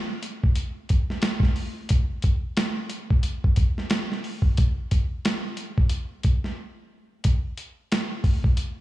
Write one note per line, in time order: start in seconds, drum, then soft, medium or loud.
0.23 closed hi-hat medium
0.44 kick medium
0.56 closed hi-hat medium
0.89 kick medium
0.89 closed hi-hat medium
1.10 snare soft
1.22 snare loud
1.22 closed hi-hat medium
1.40 kick medium
1.40 snare soft
1.56 open hi-hat soft
1.89 kick medium
1.89 closed hi-hat medium
2.22 kick medium
2.22 closed hi-hat medium
2.57 snare loud
2.57 closed hi-hat medium
2.89 closed hi-hat medium
3.10 kick medium
3.23 closed hi-hat medium
3.44 kick medium
3.56 kick medium
3.56 closed hi-hat medium
3.78 snare soft
3.90 snare loud
3.90 closed hi-hat medium
4.12 snare soft
4.24 open hi-hat soft
4.42 kick medium
4.57 kick loud
4.57 closed hi-hat medium
4.91 kick medium
4.91 closed hi-hat medium
5.25 snare loud
5.25 closed hi-hat medium
5.57 closed hi-hat medium
5.78 kick medium
5.89 closed hi-hat medium
6.23 kick medium
6.23 closed hi-hat medium
6.44 snare soft
7.24 kick medium
7.24 closed hi-hat medium
7.57 closed hi-hat medium
7.92 snare loud
7.92 closed hi-hat medium
8.24 kick medium
8.24 open hi-hat soft
8.44 kick medium
8.57 closed hi-hat medium